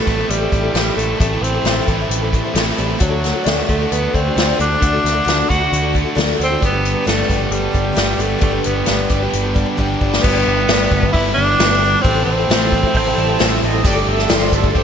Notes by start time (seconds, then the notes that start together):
Already playing: A3
0.06 A1 A2 E3 G3 A3 C4 E4 A4, kick, closed hi-hat
0.17 G3 C4 E4 A4
0.29 A1 G3, closed hi-hat
0.40 G3 C4 E4 A4
0.50 A1 G3 C4 E4 A4, kick, closed hi-hat
0.63 G3 C4 E4 A4
0.74 A1 A2 E3 G3 A3 C4 E4 A4, snare, closed hi-hat
0.95 A1 G3 A3 C4 E4 A4
0.99 closed hi-hat
1.20 A1 A2 E3 G3 A3 C4 E4 A4, kick, closed hi-hat
1.33 G3 C4 E4 A4
1.41 A1 C4, closed hi-hat
1.54 G3 C4 E4 A4
1.64 A1 A2 E3 G3, snare, closed hi-hat
1.68 C4 E4 A4
1.84 A1 A2 E3 G3 A3 C4 E4, kick, closed hi-hat
1.90 E4 A4
1.99 G3 C4 E4 A4
2.09 A1, closed hi-hat
2.22 G3 C4 E4 A4
2.33 G3 C4 E4 A4, kick, closed hi-hat
2.44 G3 C4 E4 A4
2.54 A1 A2 E3 G3 A3 C4 E4 A4, snare, closed hi-hat
2.77 A1 G3 C4 E4 A4, closed hi-hat
2.88 G3 C4 E4 A4
2.98 D2 D3 F#3 A3 D4 F#4 A4, kick, closed hi-hat
3.10 D4 F#4 A4
3.24 snare, closed hi-hat
3.32 D4 F#4 A4
3.44 D2 D3 A3 D4 F#4 A4, snare, closed hi-hat
3.68 D2 D3 A3 D4 F#4 A4, kick, closed hi-hat
3.79 D4 F#4 A4
3.92 D2 B3, closed hi-hat
4.03 D4 F#4 A4
4.13 D2 A3 C4 D4 F#4 A4, kick, closed hi-hat
4.26 D4 F#4 A4
4.37 D2 D3 A3 D4 F#4 A4, snare, closed hi-hat
4.59 D2 A3 D4 F#4 A4, closed hi-hat
4.81 D2 D3 A3 D4 F#4 A4, kick, closed hi-hat
4.93 D4 F#4 A4
5.04 D2, snare, closed hi-hat
5.13 D4 F#4 A4
5.24 D2 D3 A3 D4 F#4 A4, closed hi-hat
5.29 snare
5.47 D2 A3 D4 F#4 A4, kick, closed hi-hat
5.52 D3
5.58 D4 F#4 A4
5.72 D2, closed hi-hat
5.83 D4 F#4 A4
5.92 A3 D4 F#4 A4, kick
5.96 closed hi-hat
6.04 D4 F#4 A4
6.15 D2 D3 A3 D4 F#4 A4, snare, closed hi-hat
6.37 D2 A3 D4 F#4 A4
6.41 C4, closed hi-hat
6.48 D4 F#4 A4
6.58 G2 D3 G3 D4 G4 B4
6.62 G1 B3, kick, closed hi-hat
6.70 D4 G4 B4
6.85 closed hi-hat
6.94 D4 G4 B4
7.04 G1 G3 A3 D4 G4 B4, snare, closed hi-hat
7.26 D3 G3 B3 D4 G4 B4, kick
7.30 G1 G2, closed hi-hat
7.38 D4 G4 B4
7.50 G1 G3, closed hi-hat
7.60 D4 G4 B4
7.71 G1 G3 D4 G4 B4, kick, closed hi-hat
7.82 D4 G4 B4
7.92 G3 D4 G4 B4, closed hi-hat
7.97 G1 G2 D3 G3 B3 G4, snare
8.17 G1 G3 A3 D4 G4 B4, closed hi-hat
8.28 D4 G4 B4
8.39 G2 D3 G3 A3 D4 G4 B4, kick, closed hi-hat
8.43 G1 B3
8.51 D4 G4 B4
8.64 G1 B3, closed hi-hat
8.74 D4 G4 B4
8.85 G3 D4 G4 B4, snare, closed hi-hat
8.89 G1
9.09 G1 G2 D3 G3 B3 D4 G4 B4, kick, closed hi-hat
9.20 D4 G4 B4
9.33 G1, closed hi-hat
9.43 D4 G4 B4
9.54 G3 D4 G4 B4, kick, closed hi-hat
9.66 D4 G4 B4
9.77 G1 G2 D3 G3 B3 D4 G4 B4, kick
10.01 G1 G3 D4 G4 B4, kick
10.13 snare
10.23 G1 G2 D3 G3 B3 D4 E4 G4 B4, kick, crash
10.36 D4 E4 B4
10.47 G1
10.59 D4 E4 B4
10.68 G1 G3 D4 E4, snare, open hi-hat
10.72 B4
10.91 G1 G3 D4 E4 B4, kick
11.03 D4 E4 B4, kick
11.12 G1 G2 D3 G3 B3 D4 E4 G4, kick, open hi-hat
11.26 D4 E4 B4
11.34 G1 G3 D4 E4
11.39 B4
11.49 D4 E4 B4
11.59 G1 G3 D4 E4 B4, snare, open hi-hat
11.84 G3 D4 E4 B4
12.02 A1 A2 E3 G3 C4, kick, open hi-hat
12.06 E4 A4
12.14 G3 C4 E4 A4
12.25 A1 C4
12.38 G3 C4 E4 A4
12.49 A1 A2 E3 G3 C4 E4 A4, snare, open hi-hat
12.72 G3 C4 E4 A4, kick
12.83 C4 E4 A4, kick
12.87 G3
12.93 A1 A2 E3 C4 E4 A4 G5, kick, open hi-hat
13.05 G3 C4 E4 A4
13.16 A1 G3 C4 E4 A4 A5
13.28 G3 C4 E4 A4
13.39 A1 A2 E3 G3 C4 E4 A4 E5, snare, open hi-hat
13.62 A1 G3 C4 E4 A4 D#5
13.73 G3 C4 E4 A4
13.84 G1 G3 A3 D4 G4 A4 D5, kick, open hi-hat, tambourine
13.95 D4 G4 A4
14.07 G1 E5
14.18 D4 G4 A4, snare
14.29 G1 G3 D4 G4 A4, snare, open hi-hat, tambourine
14.33 C5
14.52 G1 G3 D4 G4 A4, kick, tambourine
14.57 A4
14.64 D4 G4 A4, kick
14.75 G1 G3 A3 D4 G4 C5, kick, open hi-hat, tambourine